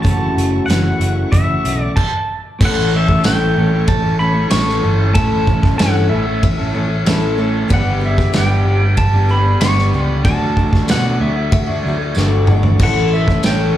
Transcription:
Already playing: clean electric guitar F#2 C#3 E3 A3 C#4 F#4, tonewheel organ A4 E5 F#5 C#6
0.02 picked electric bass F#1, twelve-string acoustic guitar F#2 C#3 E3 A3 C#4 F#4, pedal steel guitar A5, kick, closed hi-hat
0.36 picked electric bass F#1, closed hi-hat
0.66 picked electric bass F#1, twelve-string acoustic guitar F#2 C#3 E3 A3 C#4 F#4, pedal steel guitar F#5, closed hi-hat
0.71 snare
1.00 picked electric bass F#1, closed hi-hat
1.32 picked electric bass F#1, twelve-string acoustic guitar E3 A3 C#4 F#4, pedal steel guitar E5, kick, closed hi-hat
1.65 picked electric bass B1, twelve-string acoustic guitar E3 A3 C#4 F#4, closed hi-hat
1.82 pedal steel guitar D5
1.96 pedal steel guitar A5, kick, crash
2.59 picked electric bass A1, clean electric guitar A2 E3 A3 C#4 A4, tonewheel organ A4 C#5 E5 C#6, kick, crash
2.65 pedal steel guitar F#5
2.91 twelve-string acoustic guitar A3 C#4 A4
2.96 pedal steel guitar E5
3.07 clean electric guitar A3 C#4 A4, kick
3.24 picked electric bass A1, clean electric guitar A2 E3 A3 C#4 A4, pedal steel guitar G5, snare, ride bell, tambourine
3.56 picked electric bass A1, clean electric guitar E3 A3 C#4 A4
3.71 muted clean electric guitar stroke
3.88 picked electric bass A1, pedal steel guitar A5, kick, ride bell
4.02 clean electric guitar A3 C#4 A4
4.18 clean electric guitar E3 A3 C#4 A4, pedal steel guitar B5
4.33 muted clean electric guitar stroke
4.47 clean electric guitar A2 E3 A3 C#4 A4, pedal steel guitar C#6, ride bell
4.51 picked electric bass A1, snare, tambourine
4.69 snare
4.80 picked electric bass G1, clean electric guitar E3 A3 C#4 A4
5.12 picked electric bass A1, clean electric guitar A2 E3 A3 C#4 A4, pedal steel guitar A5, tonewheel organ B5, kick, ride bell
5.47 picked electric bass A1, twelve-string acoustic guitar A3 C#4 A4, kick
5.61 clean electric guitar A3 C#4 A4, kick, snare
5.76 clean electric guitar A2 E3 A3 C#4 A4, pedal steel guitar F#5, snare, ride bell, tambourine
5.81 picked electric bass G2
6.09 picked electric bass A1, clean electric guitar E3 A3 C#4 A4, pedal steel guitar E5
6.27 muted clean electric guitar stroke
6.43 picked electric bass A1, kick, ride bell
6.58 clean electric guitar A3 C#4 A4
6.72 picked electric bass A1, clean electric guitar E3 A3 C#4 A4
6.89 muted clean electric guitar stroke
7.05 picked electric bass A1, clean electric guitar A2 E3 A3 C#4 A4, snare, ride bell, tambourine
7.37 clean electric guitar E3 A3 C#4 A4
7.69 picked electric bass G1, clean electric guitar G2 D3 G3 B3 D4, tonewheel organ G4 B4 D5, kick, ride bell
7.73 clean electric guitar G4, pedal steel guitar F#5
8.00 twelve-string acoustic guitar G3 B3 D4 G4
8.05 pedal steel guitar E5
8.17 clean electric guitar G3 B3 D4 G4, kick, snare
8.33 picked electric bass G1, clean electric guitar G2 D3 G3 B3 D4 G4, pedal steel guitar G5, snare, ride bell, tambourine
8.65 picked electric bass G1, clean electric guitar G3 B3 D4 G4
8.83 muted clean electric guitar stroke
8.97 picked electric bass G1, pedal steel guitar A5, kick, ride bell
9.13 clean electric guitar G3 B3 D4 G4
9.29 clean electric guitar G3 B3 D4 G4, pedal steel guitar B5
9.46 muted clean electric guitar stroke
9.61 picked electric bass G1, clean electric guitar G2 D3 G3 B3 D4 G4, pedal steel guitar C#6, snare, ride bell, tambourine
9.78 snare
9.93 picked electric bass C#2, clean electric guitar G3 B3 D4 G4
10.07 pedal steel guitar B5
10.23 picked electric bass D2, clean electric guitar D3 F#3 A3 D4 F#4, tonewheel organ A4 F#5 D6, pedal steel guitar A5, kick, ride bell
10.57 picked electric bass D2, twelve-string acoustic guitar D4 F#4, kick
10.62 twelve-string acoustic guitar A3
10.71 clean electric guitar A3 D4 F#4, kick, snare
10.86 picked electric bass B2, clean electric guitar D3 F#3 A3 D4 F#4, snare, ride bell, tambourine
10.91 twelve-string acoustic guitar A3 F#4, pedal steel guitar F#5
11.18 picked electric bass D2, clean electric guitar F#3 A3 D4 F#4, pedal steel guitar E5
11.37 muted clean electric guitar stroke
11.52 picked electric bass D2, kick, ride bell
11.67 clean electric guitar A3 D4 F#4
11.82 picked electric bass D2, clean electric guitar F#3 A3 D4 F#4
11.88 twelve-string acoustic guitar A3 D4
11.99 muted clean electric guitar stroke
12.15 picked electric bass G1, clean electric guitar D3 F#3 A3 D4 F#4, snare, tambourine
12.21 twelve-string acoustic guitar F#4
12.47 clean electric guitar F#3 A3 D4 F#4, mid tom
12.63 floor tom
12.78 picked electric bass A1, clean electric guitar A2 E3 A3 C#4, tonewheel organ C#5 E5 C#6, kick, crash
12.82 clean electric guitar A4, pedal steel guitar F#5
13.13 twelve-string acoustic guitar A3 C#4 A4, pedal steel guitar E5
13.26 clean electric guitar A3 C#4 A4, kick, snare
13.42 picked electric bass A1, clean electric guitar A2 E3 A3 C#4 A4, pedal steel guitar G5, snare, ride bell, tambourine

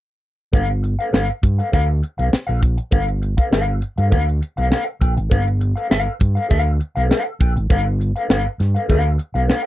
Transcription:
0.53 fingered electric bass G1, clean electric guitar A4 B4 F5, kick, closed hi-hat
0.83 muted clean electric guitar stroke, closed hi-hat
0.99 clean electric guitar A4 B4 F5, closed hi-hat
1.13 fingered electric bass G1, clean electric guitar A4 B4 F5, snare
1.30 closed hi-hat
1.43 fingered electric bass G2, muted clean electric guitar stroke, kick, closed hi-hat
1.58 clean electric guitar A4 B4 F5, closed hi-hat
1.72 fingered electric bass D2, clean electric guitar A4 B4 F5, kick, closed hi-hat
2.03 muted clean electric guitar stroke, closed hi-hat
2.18 fingered electric bass B1, clean electric guitar A4 B4 F5, closed hi-hat
2.32 muted clean electric guitar stroke, muted fingered electric bass stroke, snare
2.47 fingered electric bass A#1, clean electric guitar A4 B4 F5, closed hi-hat
2.62 muted clean electric guitar stroke, kick, closed hi-hat
2.77 muted clean electric guitar stroke, closed hi-hat
2.91 fingered electric bass G1, clean electric guitar A4 B4 F5, kick, closed hi-hat
3.08 closed hi-hat
3.22 muted clean electric guitar stroke, closed hi-hat
3.37 clean electric guitar A4 B4 F5, kick, closed hi-hat
3.51 fingered electric bass G1, clean electric guitar A4 B4 F5, snare
3.81 muted clean electric guitar stroke, closed hi-hat
3.98 fingered electric bass G2, clean electric guitar A4 B4 F5, closed hi-hat
4.10 fingered electric bass D2, clean electric guitar A4 B4 F5, kick, closed hi-hat
4.29 closed hi-hat
4.41 muted clean electric guitar stroke, closed hi-hat
4.57 fingered electric bass B1, clean electric guitar A4 B4 F5, closed hi-hat
4.70 clean electric guitar A4 B4 F5, snare
4.86 muted clean electric guitar stroke
5.01 fingered electric bass A#1, clean electric guitar A4 B4 G5, kick, closed hi-hat
5.17 fingered electric bass G#1, muted clean electric guitar stroke, closed hi-hat
5.30 fingered electric bass G1, clean electric guitar A4 B4 F5, kick, closed hi-hat
5.47 closed hi-hat
5.61 muted clean electric guitar stroke, closed hi-hat
5.75 clean electric guitar A4 B4 F5, closed hi-hat
5.90 fingered electric bass G1, clean electric guitar A4 B4 F5, snare
6.19 fingered electric bass G2, muted clean electric guitar stroke, kick, closed hi-hat
6.35 clean electric guitar A4 B4 F5, closed hi-hat
6.49 fingered electric bass D2, clean electric guitar A4 B4 F5, kick, closed hi-hat
6.80 muted clean electric guitar stroke, closed hi-hat
6.95 fingered electric bass B1, clean electric guitar A4 B4 F5, closed hi-hat
7.09 clean electric guitar A4 B4 F5, snare
7.25 muted clean electric guitar stroke
7.40 fingered electric bass A#1, clean electric guitar A4 B4 G5, kick, closed hi-hat
7.56 fingered electric bass G#1, muted clean electric guitar stroke, closed hi-hat
7.70 fingered electric bass G1, clean electric guitar A4 B4 F5, kick, closed hi-hat
8.00 muted clean electric guitar stroke, closed hi-hat
8.16 clean electric guitar A4 B4 F5, closed hi-hat
8.29 fingered electric bass G1, clean electric guitar A4 B4 F5, snare
8.59 fingered electric bass G2, muted clean electric guitar stroke, snare, closed hi-hat
8.75 clean electric guitar A4 B4 F5, closed hi-hat
8.89 fingered electric bass D2, clean electric guitar A4 B4 F5, kick, closed hi-hat
9.18 muted clean electric guitar stroke, closed hi-hat
9.34 fingered electric bass B1, clean electric guitar A4 B4 F5, closed hi-hat
9.48 clean electric guitar A4 B4 F5, snare

